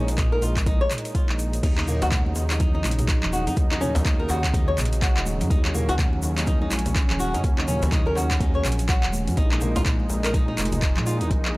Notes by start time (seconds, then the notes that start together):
Already playing: A#1 A#2 G#3 D#4
0.08 closed hi-hat, shaker
0.18 D#4, kick, clap, closed hi-hat, mid tom, shaker
0.32 A#4
0.42 A#1 F4, closed hi-hat, shaker
0.57 kick, clap, closed hi-hat, shaker
0.66 D#4, kick, closed hi-hat, shaker
0.81 C#5
0.91 clap, closed hi-hat, mid tom, shaker
0.98 closed hi-hat
1.05 closed hi-hat, shaker
1.15 F4, kick, closed hi-hat, shaker
1.29 A#1, clap
1.39 closed hi-hat, shaker
1.53 closed hi-hat, shaker
1.63 D#2 C#3 F#3 D#4, kick, closed hi-hat, crash, muted conga, djembe tone, shaker
1.78 D#4, clap
1.87 D#2 A#3, mid tom, muted conga, shaker
2.02 F#4, closed hi-hat, djembe slap, djembe bass, shaker
2.12 kick, clap, closed hi-hat, mid tom, high conga, shaker
2.26 muted conga
2.35 D#2, djembe slap, shaker
2.50 D#4, clap, closed hi-hat, muted conga, shaker
2.59 D#4, kick, closed hi-hat, high conga, low conga, shaker
2.74 D#4, muted conga, high conga
2.84 A#1, clap, closed hi-hat, high conga, shaker
2.91 closed hi-hat
2.98 closed hi-hat, mid tom, djembe tone, shaker
3.08 kick, clap, closed hi-hat, muted conga, shaker
3.23 D#1, clap, low conga
3.33 F#4, muted conga, shaker
3.47 F#2 D#4, closed hi-hat, shaker
3.56 D#2, kick, closed hi-hat, muted conga, djembe tone, shaker
3.71 D#4, clap
3.81 D#2 C#4, mid tom, muted conga, low conga, shaker
3.95 closed hi-hat, djembe slap, djembe bass, shaker
4.05 D#4, kick, clap, closed hi-hat, high conga, shaker
4.19 A#4, muted conga
4.29 D#2 F#4, clap, djembe slap, djembe tone, shaker
4.44 kick, clap, closed hi-hat, muted conga, shaker
4.53 D#4, kick, closed hi-hat, high conga, djembe tone, shaker
4.68 C#5, muted conga
4.78 A#1, clap, closed hi-hat, mid tom, djembe tone, shaker
4.85 closed hi-hat
4.93 closed hi-hat, shaker
5.02 F#4, kick, clap, closed hi-hat, muted conga, high conga, shaker
5.17 D#1, clap
5.26 muted conga, high conga, shaker
5.41 F#2, closed hi-hat, low conga, shaker
5.50 D#2 C#4 D#4, kick, closed hi-hat, djembe tone, shaker
5.65 D#4, clap
5.74 D#2 A#3, mid tom, muted conga, shaker
5.89 F#4, closed hi-hat, djembe slap, djembe bass, shaker
5.99 kick, clap, closed hi-hat, mid tom, high conga, shaker
6.13 muted conga
6.22 D#2, djembe slap, shaker
6.37 D#4, clap, closed hi-hat, muted conga, shaker
6.46 D#4, kick, closed hi-hat, high conga, low conga, shaker
6.61 D#4, muted conga, high conga
6.71 A#1, clap, closed hi-hat, high conga, shaker
6.79 closed hi-hat
6.86 closed hi-hat, mid tom, djembe tone, shaker
6.95 kick, clap, closed hi-hat, muted conga, shaker
7.10 D#1, clap, low conga
7.19 F#4, muted conga, shaker
7.34 F#2 D#4, closed hi-hat, shaker
7.44 D#2, kick, closed hi-hat, muted conga, djembe tone, shaker
7.58 D#4, clap
7.68 D#2 C#4, mid tom, muted conga, low conga, shaker
7.82 closed hi-hat, djembe slap, djembe bass, shaker
7.92 D#4, kick, clap, closed hi-hat, mid tom, high conga, shaker
8.06 A#4, muted conga
8.16 D#2 F#4, clap, djembe slap, djembe tone, shaker
8.31 kick, clap, closed hi-hat, muted conga, shaker
8.40 D#4, kick, closed hi-hat, djembe tone, high conga, shaker
8.54 C#5, muted conga
8.65 A#1, clap, closed hi-hat, mid tom, djembe tone, shaker
8.72 closed hi-hat
8.79 closed hi-hat, shaker
8.89 F#4, kick, clap, closed hi-hat, muted conga, high conga, shaker
9.03 D#1, clap
9.12 muted conga, high conga, shaker
9.27 F#2, closed hi-hat, low conga, shaker
9.36 A#1 A#2 G#3 D#4, kick, closed hi-hat, muted conga, djembe tone, shaker
9.52 D#4, clap
9.61 A#1 A#3, mid tom, muted conga, shaker
9.76 F4, closed hi-hat, djembe slap, djembe bass, shaker
9.85 kick, clap, closed hi-hat, mid tom, high conga, shaker
10.00 muted conga
10.10 A#1, djembe slap, shaker
10.23 A#4, clap, closed hi-hat, muted conga, shaker
10.33 D#4, kick, closed hi-hat, high conga, low conga, shaker
10.48 D#4, muted conga, high conga
10.58 F1, clap, closed hi-hat, high conga, shaker
10.65 closed hi-hat
10.72 closed hi-hat, mid tom, djembe tone, shaker
10.82 kick, clap, closed hi-hat, muted conga, shaker
10.96 A#2, clap, low conga
11.06 F4, muted conga, shaker
11.21 D#2 D#4, closed hi-hat, shaker
11.31 A#1, kick, closed hi-hat, muted conga, djembe tone
11.45 clap